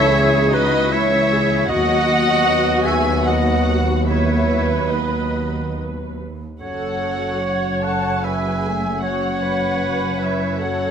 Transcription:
Already playing: cello section C#2, double bass section C#2, french horn section E3 C#4, violin section E4 E5, viola section A4, flute C#5, oboe C#5
0.12 viola section G#4
0.52 violin section D#4 D#5, viola section F#4, flute B4, oboe B4
0.92 viola section E4, violin section E4 E5, flute C#5, oboe C#5
1.30 viola section G#4
1.68 cello section D#2, double bass section D#2, french horn section F#3 B3, violin section F#4 F#5, viola section F#4, flute D#5, oboe D#5
2.85 violin section G#4 G#5, flute E5, oboe E5
3.25 violin section F#4 F#5, viola section F#4, flute D#5, oboe D#5
4.06 violin section E4 E5, viola section B4, flute C#5, oboe C#5
4.90 violin section D#4 D#5, flute B4, oboe B4
6.61 double bass section F#1, cello section F#2, french horn section F#3 C#4, violin section F#4 F#5, viola section A4, flute C#5, oboe C#5
7.43 viola section C#5
7.83 violin section A4 A5, oboe F#5, flute F#5
8.23 violin section G#4 G#5, viola section B4, flute E5, oboe E5
8.65 viola section A3
9.03 violin section F#4 F#5, oboe C#5, flute C#5, viola section C#5
9.43 viola section B4
10.18 violin section E4 E5, oboe C#5, flute C#5
10.58 violin section F#4 F#5, viola section A4, oboe C#5, flute C#5

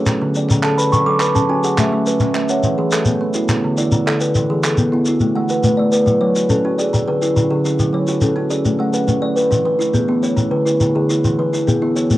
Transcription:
Already playing: kalimba F#4 G#4
0.06 kalimba D3, clap, shekere
0.22 kalimba D3
0.35 kalimba D5, shekere
0.49 kalimba D3, clap, shekere
0.63 kalimba D3 A4 A5, clap
0.78 kalimba B4 B5, shekere
0.92 kalimba F#3 C#6, shekere
1.06 kalimba F#3 A4 D6
1.20 kalimba B4 B5, clap, shekere
1.35 kalimba C#4 A5, shekere
1.49 kalimba C#4 F#4 G#5
1.64 kalimba G#4 F#5, shekere
1.78 kalimba A3 E5, clap, shekere
1.92 kalimba A3
2.06 kalimba B4, shekere
2.20 kalimba A3, clap, shekere
2.34 kalimba A3 E5, clap
2.49 kalimba C#5 F#5, shekere
2.63 kalimba E3, shekere
2.78 kalimba E3 G#4
2.91 kalimba F#4 A4, clap, shekere
3.05 kalimba B3, shekere
3.21 kalimba B3
3.34 kalimba E4 F#4, shekere
3.49 kalimba D3, clap, shekere
3.64 kalimba D3
3.78 kalimba E4 D5, shekere
3.92 kalimba D3, shekere
4.06 kalimba D3 A4, clap
4.21 kalimba B4, shekere
4.35 kalimba E3, shekere
4.50 kalimba E3 G#4
4.63 kalimba A4, clap, shekere
4.77 kalimba B3, shekere
4.92 kalimba B3 E4
5.05 kalimba E4 F#4, shekere
5.20 kalimba A3, shekere
5.35 kalimba A3 F#5
5.49 kalimba B4 F#5, shekere
5.63 kalimba A3 B4, shekere
5.77 kalimba A3 D5
5.92 kalimba B4, shekere
6.06 kalimba F#3, shekere
6.21 kalimba F#3 C#5
6.35 kalimba F#4, shekere
6.49 kalimba C#4 A4, shekere
6.65 kalimba C#4 F#4
6.78 kalimba G#4 D5, shekere
6.93 kalimba D3, shekere
7.08 kalimba D3 B4
7.22 kalimba E4 B4, shekere
7.36 kalimba D3 E4, shekere
7.51 kalimba D3 G#4
7.65 kalimba E4, shekere
7.79 kalimba F#3, shekere
7.93 kalimba F#3 C#5
8.08 kalimba F#4, shekere
8.21 kalimba C#4 A4, shekere
8.36 kalimba C#4 F#4
8.51 kalimba G#4 D5, shekere
8.65 kalimba A3, shekere
8.79 kalimba A3 F#5
8.93 kalimba B4 F#5, shekere
9.08 kalimba A3 B4, shekere
9.22 kalimba A3 D5
9.36 kalimba B4, shekere
9.51 kalimba E3, shekere
9.65 kalimba E3 B4
9.79 kalimba E4, shekere
9.94 kalimba B3 G#4, shekere
10.08 kalimba B3 E4
10.23 kalimba F#4 C#5, shekere
10.37 kalimba D3, shekere
10.51 kalimba D3 B4
10.65 kalimba E4 B4, shekere
10.80 kalimba D3 E4, shekere
10.95 kalimba D3 G#4
11.09 kalimba E4, shekere
11.24 kalimba E3, shekere
11.39 kalimba E3 B4
11.53 kalimba E4, shekere
11.67 kalimba B3 G#4, shekere
11.82 kalimba B3 E4
11.96 kalimba F#4 C#5, shekere
12.10 kalimba A3, shekere

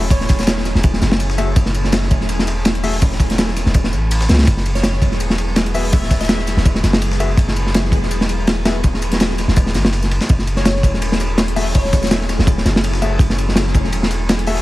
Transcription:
Already playing: 808-style bass E1, sub drop
0.02 ride
0.10 synth pluck C#5, kick, ride, tambourine
0.21 snare
0.29 kick, snare, ride, tambourine
0.39 snare, tambourine
0.43 snare, ride, tambourine
0.47 snare, tambourine
0.58 snare
0.65 snare, ride, tambourine
0.75 808-style bass E1, snare
0.83 kick, ride, tambourine
0.94 snare
1.02 808-style bass F#1, snare, ride, tambourine
1.12 snare
1.20 ride, tambourine
1.30 snare
1.38 grand piano A3 F#4 G#4 E5, ride, tambourine
1.56 808-style bass F#1, string machine F#3 A3 C#4 E4 G#4, kick, ride, tambourine
1.66 snare
1.74 ride, tambourine
1.84 snare
1.92 snare, ride, tambourine
2.02 snare
2.11 kick, ride, tambourine
2.20 808-style bass E1, snare
2.29 ride, tambourine
2.39 snare
2.47 snare, ride, tambourine
2.65 snare, ride, tambourine
2.75 closed hi-hat
2.83 grand piano A3 F#4 G#4 E5, open hi-hat, tambourine
2.93 ride
3.02 kick, ride, tambourine
3.12 snare
3.20 kick, ride, tambourine
3.30 snare, closed hi-hat
3.38 snare, ride, tambourine
3.48 snare
3.56 snare, ride, tambourine
3.66 808-style bass E1, snare
3.74 kick, ride, tambourine
3.84 snare
3.93 808-style bass A1, snare, tambourine
4.11 ride, tambourine
4.21 snare
4.29 808-style bass C#2, snare, ride, tambourine
4.34 snare, ride
4.39 snare, ride
4.43 808-style bass F#1, string machine F#3 G#3 B3 E4 G#4, snare, ride, tambourine
4.47 kick, ride
4.57 snare
4.66 ride, tambourine
4.75 synth pluck C#5, snare
4.83 snare, ride, tambourine
4.93 snare
5.02 kick, ride, tambourine
5.11 808-style bass E1, snare
5.20 ride, tambourine
5.30 snare
5.38 snare, ride, tambourine
5.56 snare, ride, tambourine
5.66 closed hi-hat
5.74 grand piano B3 F#4 G#4 E5, open hi-hat, tambourine
5.85 ride
5.93 synth pluck E5, kick, ride, tambourine
6.03 snare
6.11 kick, snare, ride, tambourine
6.21 synth pluck E5, snare, tambourine
6.25 snare, tambourine
6.29 snare, ride, tambourine
6.39 snare
6.47 snare, ride, tambourine
6.57 808-style bass E1, snare
6.65 kick, ride, tambourine
6.75 snare
6.83 808-style bass F#1, snare, ride, tambourine
6.93 snare
7.02 ride, tambourine
7.12 snare
7.20 grand piano B3 F#4 G#4 E5, ride, tambourine
7.37 808-style bass F#1, string machine F#3 G#3 B3 E4 G#4, kick, ride, tambourine
7.48 snare
7.56 ride, tambourine
7.67 snare
7.74 snare, ride, tambourine
7.85 snare
7.92 kick, ride, tambourine
8.02 808-style bass E1, snare
8.11 ride, tambourine
8.21 snare
8.29 ride, tambourine
8.47 snare, ride, tambourine
8.65 grand piano B3 F#4 G#4 E5, snare, ride, tambourine
8.83 kick, ride, tambourine
8.94 snare
9.02 ride, tambourine
9.12 snare, closed hi-hat
9.20 snare, ride, tambourine
9.30 snare
9.38 snare, ride, tambourine
9.48 808-style bass E1, snare
9.56 kick, ride, tambourine
9.66 snare
9.74 808-style bass G#1, snare, ride, tambourine
9.84 808-style bass F#1, snare
9.93 snare, ride
10.02 snare, tambourine
10.11 ride
10.21 snare
10.29 808-style bass F#1, string machine F#3 A3 C#4 E4 G#4, kick, ride, tambourine
10.39 snare
10.47 ride, tambourine
10.56 synth pluck C#5, snare
10.65 snare, ride, tambourine
10.76 snare
10.83 kick, ride, tambourine
10.93 808-style bass E1, snare
11.02 ride, tambourine
11.12 snare
11.20 snare, ride, tambourine
11.38 snare, ride, tambourine
11.48 closed hi-hat
11.56 grand piano A3 F#4 G#4 E5, open hi-hat, tambourine
11.67 ride
11.74 synth pluck C#5, kick, ride, tambourine
11.85 snare
11.93 kick, snare, ride, tambourine
12.03 snare, tambourine
12.07 snare, tambourine
12.11 snare, ride, tambourine
12.21 snare
12.29 snare, ride, tambourine
12.39 808-style bass E1, snare
12.47 kick, ride, tambourine
12.58 snare
12.65 808-style bass F#1, snare, ride, tambourine
12.76 snare
12.84 ride, tambourine
12.94 snare
13.02 grand piano A3 F#4 G#4 E5, ride, tambourine
13.19 808-style bass F#1, string machine F#3 A3 C#4 E4 G#4, kick, ride, tambourine
13.30 snare
13.38 ride, tambourine
13.49 snare
13.56 snare, ride, tambourine
13.67 snare
13.74 kick, ride, tambourine
13.84 808-style bass E1, snare
13.92 ride, tambourine
14.03 snare
14.10 snare, ride, tambourine
14.29 snare, ride, tambourine
14.39 closed hi-hat
14.47 grand piano A3 F#4 G#4 E5, open hi-hat, tambourine
14.57 ride

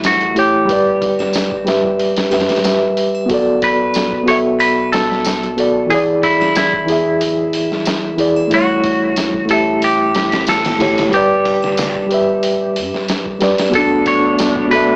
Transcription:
Already playing: sub bass A1, reed electric piano A3 E4 G4 C#5 E5
0.04 clean electric guitar F#4, snare, open hi-hat, tambourine
0.21 closed hi-hat
0.34 reed electric piano A3 E4 G4 C#5, open hi-hat
0.39 clean electric guitar G4
0.65 reed electric piano G3 G4
0.69 sub bass G1, reed electric piano B4 D5, kick, open hi-hat
1.02 kick, open hi-hat
1.19 snare, triangle
1.33 snare, open hi-hat, tambourine
1.52 kick
1.65 reed electric piano G3 G4 B4 E5, snare, open hi-hat
1.84 kick
1.99 sub bass D1, open hi-hat
2.17 snare, open hi-hat
2.30 sub bass G2, reed electric piano G3 G4 B4, snare, open hi-hat, triangle
2.34 reed electric piano E5
2.40 snare, open hi-hat
2.49 sub bass D1, snare, open hi-hat
2.56 snare, open hi-hat
2.62 reed electric piano G3 G4 B4 E5, snare, open hi-hat, tambourine
2.97 open hi-hat
3.15 triangle
3.26 reed electric piano B3 F#4, kick, open hi-hat
3.30 sub bass B1, reed electric piano A4 D5
3.62 clean electric guitar B4, kick, open hi-hat
3.94 snare, open hi-hat, tambourine
4.12 kick
4.23 reed electric piano B3 F#4
4.28 reed electric piano A4 E5, clean electric guitar C#5, open hi-hat
4.59 clean electric guitar B4, open hi-hat, triangle
4.92 clean electric guitar A4, snare, open hi-hat
5.12 snare
5.25 snare, open hi-hat, tambourine
5.43 closed hi-hat
5.56 reed electric piano B3 F#4 A4 D5, open hi-hat
5.86 reed electric piano E3 E4, clean electric guitar G#4
5.90 sub bass E1, reed electric piano G#4 D5, kick, open hi-hat
6.23 clean electric guitar E4, kick, open hi-hat
6.41 snare, triangle
6.55 clean electric guitar E4, snare, open hi-hat, tambourine
6.73 kick
6.84 reed electric piano E3 E4, open hi-hat
6.90 reed electric piano G#4 E5
7.21 sub bass D1, open hi-hat
7.53 open hi-hat, triangle
7.72 snare
7.85 sub bass E1, snare, open hi-hat, tambourine
8.16 reed electric piano E3 E4 G#4 D5, open hi-hat
8.36 triangle
8.47 reed electric piano A3 E4, open hi-hat
8.51 sub bass A1, reed electric piano G3 C#5, clean electric guitar F#4, kick
8.84 kick, open hi-hat
9.16 snare, open hi-hat, tambourine
9.34 kick
9.45 reed electric piano A3 E4, open hi-hat
9.50 reed electric piano G4 E5, clean electric guitar A4
9.82 clean electric guitar G4, open hi-hat, triangle
10.15 snare, open hi-hat
10.32 snare, open hi-hat
10.47 clean electric guitar A4, snare, open hi-hat, tambourine
10.65 snare, open hi-hat
10.78 reed electric piano A3 E4 G4 C#5, snare, open hi-hat
10.98 snare, open hi-hat
11.09 reed electric piano G3 G4, kick, open hi-hat
11.13 sub bass G1, clean electric guitar G4, reed electric piano B4 D5
11.45 kick, open hi-hat
11.62 snare, triangle
11.77 snare, open hi-hat, tambourine
11.95 kick
12.06 reed electric piano G3 G4
12.11 reed electric piano B4 E5, open hi-hat
12.43 sub bass D1, open hi-hat
12.76 sub bass G2, open hi-hat, triangle
12.94 sub bass D1, snare
13.08 snare, open hi-hat, tambourine
13.26 kick
13.39 reed electric piano G3 G4 B4 D5, snare, open hi-hat
13.58 snare, open hi-hat, triangle
13.69 string section A3 B3 D4, reed electric piano B3 F#4, kick, open hi-hat
13.74 sub bass B1, reed electric piano D4 A4, clean electric guitar A4
14.06 clean electric guitar C#5, kick, open hi-hat
14.39 snare, open hi-hat, tambourine
14.56 kick
14.68 reed electric piano B3 F#4, clean electric guitar B4, open hi-hat
14.73 reed electric piano A4 E5

